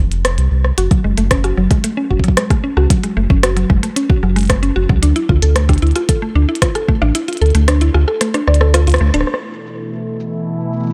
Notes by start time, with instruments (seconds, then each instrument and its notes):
0.00 analog synth bass F1
0.12 closed hi-hat
0.25 cross-stick, closed hi-hat
0.38 analog synth bass C2, closed hi-hat
0.51 analog synth bass C2
0.64 cross-stick
0.78 analog synth bass F#1, synth arpeggio sound F#4, closed hi-hat
0.91 synth arpeggio sound F#3, kick, closed hi-hat
1.04 analog synth bass F#1, synth arpeggio sound G#3
1.18 analog synth bass F#1, synth arpeggio sound A3, closed hi-hat
1.31 synth arpeggio sound C#4, kick, cross-stick, closed hi-hat
1.44 synth arpeggio sound F#4, cross-stick, closed hi-hat
1.57 analog synth bass F#1, synth arpeggio sound F#3
1.71 synth arpeggio sound G#3, kick, cross-stick, closed hi-hat
1.84 synth arpeggio sound A3, closed hi-hat
1.97 synth arpeggio sound C#4
2.11 analog synth bass F#1, synth arpeggio sound F#4, kick
2.19 kick
2.24 synth arpeggio sound F#3, closed hi-hat
2.28 kick
2.37 synth arpeggio sound G#3, cross-stick, closed hi-hat
2.50 synth arpeggio sound A3, kick, cross-stick, closed hi-hat
2.64 synth arpeggio sound C#4
2.77 analog synth bass C#2, synth arpeggio sound F#4, cross-stick
2.90 synth arpeggio sound F#3, kick, closed hi-hat
3.04 synth arpeggio sound G#3, closed hi-hat
3.17 analog synth bass F#1, synth arpeggio sound A3
3.30 analog synth bass F#1, synth arpeggio sound C#4, kick
3.43 synth arpeggio sound F#4, cross-stick, closed hi-hat
3.56 synth arpeggio sound F#3, closed hi-hat
3.70 analog synth bass F#1, synth arpeggio sound G#3, kick
3.83 synth arpeggio sound A3, closed hi-hat
3.96 synth arpeggio sound C#4, closed hi-hat
4.10 synth arpeggio sound F#4, kick
4.23 analog synth bass F#1, synth arpeggio sound F#3, cross-stick
4.36 synth arpeggio sound G#3, closed hi-hat
4.39 closed hi-hat
4.41 closed hi-hat
4.43 closed hi-hat
4.45 closed hi-hat
4.47 synth arpeggio sound A3, kick, cross-stick, closed hi-hat
4.50 closed hi-hat
4.63 synth arpeggio sound C#4, closed hi-hat
4.76 analog synth bass F#1, synth arpeggio sound F#4
4.89 analog synth bass C#2, synth arpeggio sound F#3, kick
5.02 analog synth bass D2, synth arpeggio sound D4, closed hi-hat
5.16 synth arpeggio sound E4, closed hi-hat
5.29 analog synth bass D2, synth arpeggio sound F4, kick
5.42 analog synth bass D2, synth arpeggio sound A4, closed hi-hat
5.56 synth arpeggio sound A3, cross-stick, closed hi-hat
5.69 synth arpeggio sound D4, kick, cross-stick, closed hi-hat
5.73 closed hi-hat
5.78 closed hi-hat
5.82 analog synth bass D2, synth arpeggio sound E4, closed hi-hat
5.87 closed hi-hat
5.91 closed hi-hat
5.96 synth arpeggio sound F4, cross-stick, closed hi-hat
6.09 synth arpeggio sound A4, kick, closed hi-hat
6.22 synth arpeggio sound A3
6.35 analog synth bass D2, synth arpeggio sound D4
6.49 synth arpeggio sound E4
6.55 closed hi-hat
6.62 synth arpeggio sound F4, kick, cross-stick, closed hi-hat
6.75 synth arpeggio sound A4, cross-stick, closed hi-hat
6.88 synth arpeggio sound A3, kick
7.02 analog synth bass A1, synth arpeggio sound D4, cross-stick
7.15 synth arpeggio sound E4, closed hi-hat
7.28 synth arpeggio sound F4, closed hi-hat
7.33 closed hi-hat
7.37 closed hi-hat
7.41 analog synth bass D2, synth arpeggio sound A4, closed hi-hat
7.46 closed hi-hat
7.50 closed hi-hat
7.55 analog synth bass D2, synth arpeggio sound A3, closed hi-hat
7.68 synth arpeggio sound D4, cross-stick, closed hi-hat
7.81 synth arpeggio sound E4, closed hi-hat
7.94 analog synth bass D2, synth arpeggio sound F4, cross-stick
8.08 synth arpeggio sound A4, cross-stick
8.21 synth arpeggio sound A3, cross-stick, closed hi-hat
8.34 synth arpeggio sound D4, cross-stick, closed hi-hat
8.48 analog synth bass D2, synth arpeggio sound D5, cross-stick
8.54 closed hi-hat
8.61 synth arpeggio sound A4, cross-stick
8.74 synth arpeggio sound F4, cross-stick, closed hi-hat
8.87 analog synth bass D2, synth arpeggio sound F4, closed hi-hat
8.90 closed hi-hat
8.92 cross-stick, closed hi-hat
8.96 closed hi-hat
8.98 analog synth bass D2, synth arpeggio sound A3, closed hi-hat
9.14 analog synth bass D1, synth arpeggio sound D4, closed hi-hat
9.21 cross-stick
9.27 analog synth pad B2 E3 A3 E4 A4, cross-stick
9.34 cross-stick
9.67 cabasa
10.20 cabasa
10.73 cabasa
10.77 cabasa
10.80 cabasa
10.83 cabasa
10.87 cabasa
10.90 cabasa